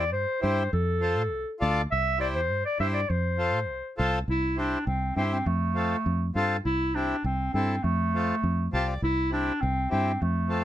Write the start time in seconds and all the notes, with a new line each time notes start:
Already playing: D5
0.00 E2
0.12 G2 C5
0.41 G2 E4 G4 C5
0.73 F2 A4
1.01 F4 A4 C5
1.18 A2
1.33 C2
1.60 D2 F4 A4 D5
1.92 C2 E5
2.19 E4 G4 C5 D5
2.35 E2 C5
2.51 G2
2.65 D5
2.79 G2 E4 G4 C5 E5
2.93 D5
3.09 F2 C5
3.38 F4 A4 C5
3.55 A2
3.70 C2
3.98 C2 F4 A4 C5
4.28 C2 E4
4.57 D4 E4 G4 C5
4.86 C2 C4
5.16 G2 C4 E4 G4 C5
5.31 C4
5.46 F2 A3
5.75 C4 F4 A4
6.06 F2
6.35 G2 C4 F4 A4
6.65 C2 E4
6.95 C4 D4 E4 G4
7.24 C2 C4
7.54 G2 C4 E4 A4
7.83 F2 A3
8.15 C4 F4 A4
8.43 F2
8.73 C2 C4 F4 G4 A5
8.87 D5
9.02 C2 E4
9.31 C4 D4 E4 G4
9.61 C2 C4
9.90 G2 C4 E4 G4
10.22 F2 A3
10.49 C4 F4 A4